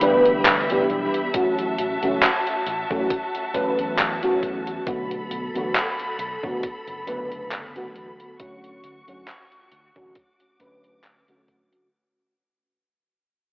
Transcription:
0.00 0.80 D2 medium
0.00 0.64 E3 medium
0.00 0.64 G3 medium
0.00 0.64 B3 medium
0.00 0.64 D4 medium
0.00 1.31 G4 medium
0.00 0.65 B4 loud
0.00 4.83 E5 medium
0.00 1.31 B5 medium
0.00 closed hi-hat medium
0.26 closed hi-hat soft
0.45 clap loud
0.45 closed hi-hat loud
0.69 1.29 E3 medium
0.69 1.29 G3 medium
0.69 1.29 B3 medium
0.69 1.29 D4 medium
0.69 1.30 G4 medium
0.69 closed hi-hat soft
0.90 1.07 B1 medium
0.90 closed hi-hat soft
1.14 closed hi-hat soft
1.33 1.96 E3 medium
1.33 1.96 F#3 medium
1.33 1.97 A3 medium
1.33 1.97 C#4 medium
1.33 4.83 F#4 medium
1.33 1.97 F#4 medium
1.33 4.83 A5 medium
1.33 kick loud
1.33 closed hi-hat loud
1.58 closed hi-hat soft
1.78 1.95 A1 medium
1.78 closed hi-hat medium
2.02 2.16 C#2 medium
2.02 2.24 E3 medium
2.02 2.24 F#3 medium
2.02 2.24 A3 medium
2.02 2.24 C#4 medium
2.02 2.24 F#4 medium
2.02 closed hi-hat soft
2.22 clap loud
2.22 closed hi-hat medium
2.47 closed hi-hat soft
2.66 2.83 A1 medium
2.66 closed hi-hat medium
2.90 3.05 A2 medium
2.90 3.12 E3 medium
2.90 3.12 F#3 medium
2.90 3.12 A3 medium
2.90 3.12 C#4 medium
2.90 3.13 F#4 loud
2.90 kick loud
3.10 kick loud
3.10 closed hi-hat loud
3.35 closed hi-hat soft
3.54 4.17 E3 medium
3.54 4.17 F#3 medium
3.54 4.17 A3 medium
3.54 4.17 C#4 medium
3.54 4.17 B4 loud
3.54 kick medium
3.54 closed hi-hat medium
3.79 4.78 E2 medium
3.79 closed hi-hat soft
3.99 clap loud
3.99 closed hi-hat medium
4.22 4.82 E3 medium
4.22 4.82 F#3 medium
4.22 4.82 A3 medium
4.22 4.82 C#4 medium
4.22 4.82 F#4 medium
4.22 closed hi-hat soft
4.43 kick medium
4.43 closed hi-hat soft
4.67 closed hi-hat soft
4.86 5.19 B1 medium
4.86 5.49 D3 medium
4.86 5.49 F#3 medium
4.86 5.49 A3 medium
4.86 5.50 B3 medium
4.86 5.50 F#4 medium
4.86 8.36 A4 medium
4.86 8.36 B5 medium
4.86 kick loud
4.86 closed hi-hat medium
5.11 closed hi-hat soft
5.31 5.48 B1 medium
5.31 closed hi-hat medium
5.54 5.69 E2 medium
5.54 5.76 D3 medium
5.54 5.76 F#3 medium
5.54 5.77 A3 medium
5.54 5.77 B3 medium
5.54 5.77 F#4 medium
5.54 closed hi-hat soft
5.75 clap loud
5.75 closed hi-hat medium
5.99 closed hi-hat soft
6.19 6.36 B1 medium
6.19 closed hi-hat medium
6.43 6.57 F#1 medium
6.43 6.65 D3 medium
6.43 6.65 F#3 medium
6.43 6.65 A3 medium
6.43 6.65 B3 medium
6.43 6.65 F#4 loud
6.43 kick loud
6.63 muted fingered electric bass stroke soft
6.63 kick loud
6.63 closed hi-hat medium
6.87 7.86 F#1 medium
6.87 closed hi-hat soft
7.07 7.70 D3 medium
7.07 7.70 F#3 medium
7.07 7.70 A3 medium
7.07 7.70 B3 medium
7.07 7.70 B4 loud
7.07 closed hi-hat medium
7.32 closed hi-hat soft
7.51 clap loud
7.51 closed hi-hat medium
7.75 8.35 D3 medium
7.75 8.35 F#3 medium
7.75 8.35 A3 medium
7.75 8.35 B3 medium
7.75 8.35 F#4 medium
7.75 closed hi-hat soft
7.95 8.13 E2 medium
7.95 closed hi-hat soft
8.20 closed hi-hat soft
8.39 9.02 D3 medium
8.39 9.02 F#3 medium
8.39 9.02 A3 medium
8.39 9.02 C#4 medium
8.39 11.89 F#4 medium
8.39 9.03 F#4 medium
8.39 10.15 C#6 medium
8.39 kick loud
8.39 closed hi-hat medium
8.64 closed hi-hat soft
8.84 9.01 D2 medium
8.84 closed hi-hat medium
9.07 9.22 F#2 medium
9.07 9.29 D3 medium
9.07 9.29 F#3 medium
9.07 9.30 A3 medium
9.07 9.30 C#4 medium
9.07 9.30 F#4 medium
9.07 closed hi-hat soft
9.28 clap loud
9.28 closed hi-hat medium
9.52 closed hi-hat soft
9.72 9.89 D2 medium
9.72 closed hi-hat medium
9.96 10.10 A1 medium
9.96 10.18 D3 medium
9.96 10.18 F#3 medium
9.96 10.18 A3 medium
9.96 10.18 C#4 medium
9.96 10.18 F#4 loud
9.96 kick loud
10.16 11.91 D6 medium
10.16 kick loud
10.16 closed hi-hat medium
10.40 closed hi-hat soft
10.60 11.23 D3 medium
10.60 11.23 F#3 medium
10.60 11.23 A3 medium
10.60 11.23 C#4 medium
10.60 11.23 B4 loud
10.60 kick medium
10.60 closed hi-hat medium
10.84 closed hi-hat soft
11.04 clap loud
11.04 closed hi-hat medium
11.28 11.83 D2 medium
11.28 11.88 D3 medium
11.28 11.88 F#3 medium
11.28 11.88 A3 medium
11.28 11.88 C#4 medium
11.28 11.88 F#4 medium
11.28 closed hi-hat soft
11.48 kick medium
11.48 closed hi-hat soft
11.72 closed hi-hat soft

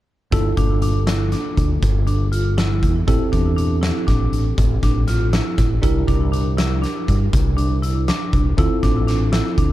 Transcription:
0.31 0.52 G1 medium
0.31 3.03 A#3 medium
0.31 3.04 D4 medium
0.31 0.50 E4 medium
0.31 3.04 F4 medium
0.31 3.04 A4 medium
0.31 kick loud
0.31 closed hi-hat medium
0.57 1.34 G1 medium
0.57 0.75 D4 medium
0.57 kick medium
0.57 closed hi-hat medium
0.82 1.00 D4 medium
0.82 closed hi-hat medium
1.07 1.25 E4 medium
1.07 snare loud
1.07 closed hi-hat medium
1.32 1.68 D4 medium
1.32 snare soft
1.32 closed hi-hat medium
1.57 1.77 D2 medium
1.57 kick medium
1.57 closed hi-hat medium
1.82 2.84 G1 medium
1.82 kick loud
1.82 closed hi-hat medium
2.07 2.25 D4 medium
2.07 closed hi-hat medium
2.32 2.50 F4 medium
2.32 closed hi-hat medium
2.58 2.93 E4 medium
2.58 snare loud
2.58 closed hi-hat medium
2.83 3.02 E2 medium
2.83 kick medium
2.83 closed hi-hat medium
3.07 3.17 A1 loud
3.07 5.79 C4 medium
3.07 3.25 E4 medium
3.07 5.79 E4 medium
3.07 5.79 G4 medium
3.07 5.79 A4 medium
3.07 kick loud
3.07 closed hi-hat medium
3.32 3.90 E2 medium
3.32 3.50 D4 medium
3.32 kick medium
3.32 closed hi-hat medium
3.56 3.75 D4 medium
3.56 closed hi-hat medium
3.81 4.00 E4 medium
3.81 snare loud
3.81 closed hi-hat medium
4.07 4.27 A1 medium
4.07 4.43 D4 medium
4.07 kick medium
4.07 snare soft
4.07 closed hi-hat medium
4.32 4.52 A1 medium
4.32 closed hi-hat medium
4.58 4.77 A1 medium
4.58 kick loud
4.58 closed hi-hat medium
4.83 5.40 A1 medium
4.83 5.01 D4 medium
4.83 kick medium
4.83 snare soft
4.83 closed hi-hat medium
5.08 5.25 F4 medium
5.08 snare soft
5.08 closed hi-hat medium
5.33 5.69 E4 medium
5.33 snare loud
5.33 closed hi-hat medium
5.58 5.77 A1 medium
5.58 kick medium
5.58 snare soft
5.58 closed hi-hat medium
5.82 6.02 C2 medium
5.82 8.53 D4 medium
5.82 8.54 E4 medium
5.82 6.01 E4 medium
5.82 8.54 G4 medium
5.82 8.54 A#4 medium
5.82 kick loud
5.82 closed hi-hat medium
6.07 6.85 C2 medium
6.07 6.25 D4 medium
6.07 kick medium
6.07 closed hi-hat medium
6.32 6.50 D4 medium
6.32 closed hi-hat medium
6.57 6.75 E4 medium
6.57 snare loud
6.57 closed hi-hat medium
6.82 7.18 D4 medium
6.82 snare soft
6.82 closed hi-hat medium
7.08 7.27 G2 medium
7.08 kick medium
7.08 closed hi-hat medium
7.33 8.10 C2 medium
7.33 kick loud
7.33 closed hi-hat medium
7.57 7.75 D4 medium
7.57 closed hi-hat medium
7.82 8.00 E4 medium
7.82 closed hi-hat medium
8.08 8.44 D4 medium
8.08 snare medium
8.08 closed hi-hat medium
8.33 8.52 C2 medium
8.33 kick medium
8.33 closed hi-hat medium
8.57 8.68 D2 loud
8.57 9.72 C4 medium
8.57 9.72 E4 medium
8.57 8.76 E4 medium
8.57 9.72 F4 medium
8.57 9.72 A4 medium
8.57 kick loud
8.57 closed hi-hat medium
8.83 9.41 A1 medium
8.83 9.01 D4 medium
8.83 kick medium
8.83 snare soft
8.83 closed hi-hat medium
9.08 9.26 D4 medium
9.08 snare soft
9.08 closed hi-hat medium
9.32 9.50 E4 medium
9.32 snare loud
9.32 closed hi-hat medium
9.58 9.72 D2 medium
9.58 9.72 D4 medium
9.58 kick medium
9.58 closed hi-hat medium

